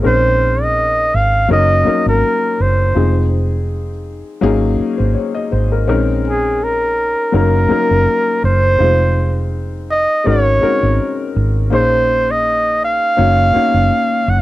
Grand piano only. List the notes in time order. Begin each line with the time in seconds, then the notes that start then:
0.02 G#3 C4 C#4 D#4 A#4
1.48 F#3 A#3 C#4 D#4 A#4
1.85 F#3 A#3 C#4 D#4 A#4
2.95 F3 G#3 C4 D#4 G#4
4.41 F#3 A#3 C#4 D#4 G#4
4.98 C5
5.15 C#5
5.35 D#5
5.52 C5
5.72 A#4
5.87 G#3 C4 C#4 D#4 A#4
7.32 F#3 A#3 C#4 D#4 A#4
7.69 F#3 A#3 C#4 D#4 A#4
8.78 G#3 C4 D#4 F4 C5
10.24 G#3 C#4 D#4 F#4 A#4
10.61 G#3 C4 D#4 F#4 A#4
10.68 C#4
11.70 A#3 C#4 D#4 G#4 C5
13.16 A#3 C#4 D#4 F#4 C#5
13.53 A#3 C#4 D#4 F#4 C#5